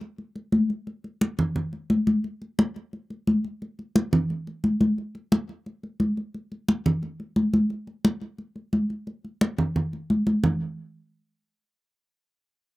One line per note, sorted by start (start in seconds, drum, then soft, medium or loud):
0.01 high conga soft
0.18 high conga soft
0.36 high conga soft
0.52 high conga medium
0.70 high conga soft
0.87 high conga soft
1.04 high conga soft
1.21 high conga medium
1.39 high conga soft
1.39 low conga medium
1.56 high conga soft
1.56 low conga medium
1.73 high conga soft
1.90 high conga medium
2.07 high conga medium
2.24 high conga soft
2.42 high conga soft
2.59 high conga loud
2.76 high conga soft
2.93 high conga soft
3.10 high conga soft
3.27 high conga medium
3.45 high conga soft
3.62 high conga soft
3.79 high conga soft
3.96 high conga loud
4.13 high conga soft
4.13 low conga loud
4.30 high conga soft
4.47 high conga soft
4.64 high conga medium
4.81 high conga medium
4.98 high conga soft
5.15 high conga soft
5.32 high conga loud
5.49 high conga soft
5.66 high conga soft
5.83 high conga soft
6.00 high conga medium
6.17 high conga soft
6.34 high conga soft
6.52 high conga soft
6.69 high conga loud
6.86 high conga soft
6.86 low conga medium
7.03 high conga soft
7.20 high conga soft
7.36 high conga medium
7.54 high conga medium
7.70 high conga soft
7.87 high conga soft
8.05 high conga medium
8.22 high conga soft
8.38 high conga soft
8.56 high conga soft
8.73 high conga medium
8.90 high conga soft
9.07 high conga soft
9.24 high conga soft
9.41 high conga loud
9.58 high conga soft
9.58 low conga medium
9.76 high conga soft
9.76 low conga medium
9.93 high conga soft
10.10 high conga medium
10.27 high conga medium
10.44 low conga loud